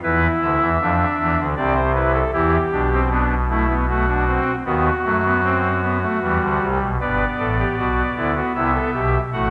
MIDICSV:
0, 0, Header, 1, 2, 480
1, 0, Start_track
1, 0, Tempo, 774194
1, 22, Time_signature, 3, 2, 24, 8
1, 5891, End_track
2, 0, Start_track
2, 0, Title_t, "Pipe organ"
2, 0, Program_c, 0, 19
2, 18, Note_on_c, 0, 64, 80
2, 18, Note_on_c, 0, 71, 70
2, 20, Note_on_c, 0, 52, 93
2, 21, Note_on_c, 0, 40, 97
2, 167, Note_off_c, 0, 71, 0
2, 169, Note_off_c, 0, 40, 0
2, 169, Note_off_c, 0, 52, 0
2, 262, Note_on_c, 0, 50, 85
2, 263, Note_on_c, 0, 38, 83
2, 263, Note_on_c, 0, 76, 65
2, 364, Note_off_c, 0, 38, 0
2, 364, Note_off_c, 0, 50, 0
2, 380, Note_on_c, 0, 40, 89
2, 383, Note_on_c, 0, 52, 84
2, 429, Note_off_c, 0, 64, 0
2, 482, Note_off_c, 0, 40, 0
2, 483, Note_off_c, 0, 52, 0
2, 502, Note_on_c, 0, 41, 81
2, 502, Note_on_c, 0, 62, 69
2, 504, Note_on_c, 0, 53, 88
2, 647, Note_off_c, 0, 41, 0
2, 648, Note_off_c, 0, 53, 0
2, 741, Note_on_c, 0, 40, 84
2, 743, Note_on_c, 0, 52, 88
2, 840, Note_off_c, 0, 40, 0
2, 841, Note_off_c, 0, 52, 0
2, 857, Note_on_c, 0, 38, 80
2, 857, Note_on_c, 0, 50, 83
2, 873, Note_off_c, 0, 76, 0
2, 907, Note_off_c, 0, 62, 0
2, 957, Note_off_c, 0, 38, 0
2, 957, Note_off_c, 0, 50, 0
2, 967, Note_on_c, 0, 36, 90
2, 968, Note_on_c, 0, 74, 71
2, 969, Note_on_c, 0, 48, 82
2, 970, Note_on_c, 0, 60, 77
2, 1072, Note_off_c, 0, 74, 0
2, 1086, Note_on_c, 0, 72, 72
2, 1118, Note_off_c, 0, 60, 0
2, 1191, Note_off_c, 0, 72, 0
2, 1207, Note_on_c, 0, 64, 69
2, 1208, Note_on_c, 0, 71, 70
2, 1312, Note_off_c, 0, 71, 0
2, 1326, Note_on_c, 0, 69, 68
2, 1357, Note_off_c, 0, 64, 0
2, 1380, Note_off_c, 0, 36, 0
2, 1382, Note_off_c, 0, 48, 0
2, 1431, Note_off_c, 0, 69, 0
2, 1445, Note_on_c, 0, 40, 80
2, 1445, Note_on_c, 0, 52, 84
2, 1445, Note_on_c, 0, 64, 94
2, 1445, Note_on_c, 0, 67, 78
2, 1595, Note_off_c, 0, 52, 0
2, 1595, Note_off_c, 0, 64, 0
2, 1596, Note_off_c, 0, 40, 0
2, 1689, Note_on_c, 0, 35, 73
2, 1689, Note_on_c, 0, 47, 70
2, 1689, Note_on_c, 0, 62, 79
2, 1793, Note_off_c, 0, 62, 0
2, 1814, Note_on_c, 0, 60, 88
2, 1860, Note_off_c, 0, 67, 0
2, 1915, Note_off_c, 0, 60, 0
2, 1926, Note_on_c, 0, 62, 72
2, 1928, Note_on_c, 0, 59, 85
2, 2076, Note_off_c, 0, 62, 0
2, 2077, Note_off_c, 0, 59, 0
2, 2166, Note_on_c, 0, 57, 82
2, 2168, Note_on_c, 0, 64, 66
2, 2270, Note_off_c, 0, 57, 0
2, 2287, Note_on_c, 0, 59, 88
2, 2317, Note_off_c, 0, 64, 0
2, 2391, Note_off_c, 0, 59, 0
2, 2410, Note_on_c, 0, 66, 69
2, 2412, Note_on_c, 0, 57, 78
2, 2514, Note_off_c, 0, 57, 0
2, 2530, Note_on_c, 0, 62, 85
2, 2633, Note_off_c, 0, 62, 0
2, 2649, Note_on_c, 0, 60, 79
2, 2721, Note_off_c, 0, 35, 0
2, 2721, Note_off_c, 0, 47, 0
2, 2798, Note_off_c, 0, 60, 0
2, 2823, Note_off_c, 0, 66, 0
2, 2885, Note_on_c, 0, 59, 91
2, 2887, Note_on_c, 0, 39, 70
2, 2888, Note_on_c, 0, 51, 79
2, 2889, Note_on_c, 0, 66, 81
2, 3036, Note_off_c, 0, 59, 0
2, 3038, Note_off_c, 0, 39, 0
2, 3038, Note_off_c, 0, 51, 0
2, 3131, Note_on_c, 0, 54, 74
2, 3131, Note_on_c, 0, 57, 78
2, 3132, Note_on_c, 0, 42, 70
2, 3235, Note_off_c, 0, 57, 0
2, 3251, Note_on_c, 0, 59, 83
2, 3355, Note_off_c, 0, 59, 0
2, 3370, Note_on_c, 0, 60, 89
2, 3520, Note_off_c, 0, 60, 0
2, 3609, Note_on_c, 0, 59, 85
2, 3714, Note_off_c, 0, 59, 0
2, 3733, Note_on_c, 0, 57, 77
2, 3752, Note_off_c, 0, 54, 0
2, 3753, Note_off_c, 0, 42, 0
2, 3837, Note_off_c, 0, 57, 0
2, 3854, Note_on_c, 0, 40, 73
2, 3855, Note_on_c, 0, 52, 73
2, 3856, Note_on_c, 0, 55, 79
2, 3957, Note_off_c, 0, 40, 0
2, 3958, Note_off_c, 0, 52, 0
2, 3973, Note_on_c, 0, 38, 66
2, 3975, Note_on_c, 0, 50, 70
2, 4078, Note_off_c, 0, 38, 0
2, 4079, Note_off_c, 0, 50, 0
2, 4099, Note_on_c, 0, 36, 72
2, 4100, Note_on_c, 0, 48, 70
2, 4135, Note_off_c, 0, 66, 0
2, 4201, Note_off_c, 0, 36, 0
2, 4202, Note_off_c, 0, 48, 0
2, 4218, Note_on_c, 0, 47, 70
2, 4220, Note_on_c, 0, 35, 65
2, 4272, Note_off_c, 0, 55, 0
2, 4322, Note_off_c, 0, 47, 0
2, 4323, Note_off_c, 0, 35, 0
2, 4342, Note_on_c, 0, 43, 58
2, 4342, Note_on_c, 0, 59, 60
2, 4342, Note_on_c, 0, 71, 71
2, 4342, Note_on_c, 0, 74, 60
2, 4344, Note_on_c, 0, 31, 56
2, 4491, Note_off_c, 0, 43, 0
2, 4492, Note_off_c, 0, 71, 0
2, 4493, Note_off_c, 0, 31, 0
2, 4585, Note_on_c, 0, 33, 58
2, 4585, Note_on_c, 0, 45, 59
2, 4585, Note_on_c, 0, 69, 67
2, 4687, Note_off_c, 0, 69, 0
2, 4706, Note_on_c, 0, 67, 64
2, 4734, Note_off_c, 0, 33, 0
2, 4734, Note_off_c, 0, 45, 0
2, 4808, Note_off_c, 0, 67, 0
2, 4824, Note_on_c, 0, 35, 63
2, 4824, Note_on_c, 0, 47, 58
2, 4824, Note_on_c, 0, 66, 64
2, 4973, Note_off_c, 0, 35, 0
2, 4973, Note_off_c, 0, 47, 0
2, 4973, Note_off_c, 0, 66, 0
2, 5062, Note_on_c, 0, 50, 64
2, 5064, Note_on_c, 0, 64, 69
2, 5065, Note_on_c, 0, 38, 60
2, 5167, Note_off_c, 0, 64, 0
2, 5169, Note_off_c, 0, 74, 0
2, 5182, Note_on_c, 0, 66, 65
2, 5211, Note_off_c, 0, 50, 0
2, 5213, Note_off_c, 0, 38, 0
2, 5285, Note_off_c, 0, 66, 0
2, 5298, Note_on_c, 0, 48, 60
2, 5299, Note_on_c, 0, 36, 66
2, 5299, Note_on_c, 0, 76, 62
2, 5302, Note_on_c, 0, 64, 76
2, 5404, Note_off_c, 0, 64, 0
2, 5422, Note_on_c, 0, 69, 76
2, 5447, Note_off_c, 0, 48, 0
2, 5448, Note_off_c, 0, 36, 0
2, 5525, Note_off_c, 0, 69, 0
2, 5541, Note_on_c, 0, 67, 72
2, 5542, Note_on_c, 0, 35, 61
2, 5542, Note_on_c, 0, 47, 63
2, 5580, Note_off_c, 0, 59, 0
2, 5689, Note_off_c, 0, 35, 0
2, 5689, Note_off_c, 0, 67, 0
2, 5690, Note_off_c, 0, 47, 0
2, 5711, Note_off_c, 0, 76, 0
2, 5784, Note_on_c, 0, 45, 69
2, 5784, Note_on_c, 0, 66, 69
2, 5785, Note_on_c, 0, 57, 65
2, 5785, Note_on_c, 0, 78, 79
2, 5787, Note_on_c, 0, 33, 72
2, 5891, Note_off_c, 0, 33, 0
2, 5891, Note_off_c, 0, 45, 0
2, 5891, Note_off_c, 0, 57, 0
2, 5891, Note_off_c, 0, 66, 0
2, 5891, Note_off_c, 0, 78, 0
2, 5891, End_track
0, 0, End_of_file